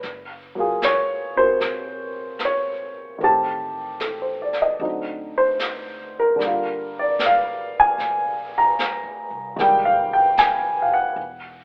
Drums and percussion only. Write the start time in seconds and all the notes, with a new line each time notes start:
0.03 brush sweep, snare
0.82 snare, hi-hat pedal
1.60 brush sweep, snare
2.39 snare, hi-hat pedal
3.20 brush sweep
4.00 snare, hi-hat pedal
4.53 snare
4.80 brush sweep
5.59 snare, hi-hat pedal
6.40 brush sweep, snare
7.19 snare, hi-hat pedal
7.99 brush sweep, snare
8.79 snare, hi-hat pedal
9.59 brush sweep, snare
10.37 snare, hi-hat pedal
11.16 brush sweep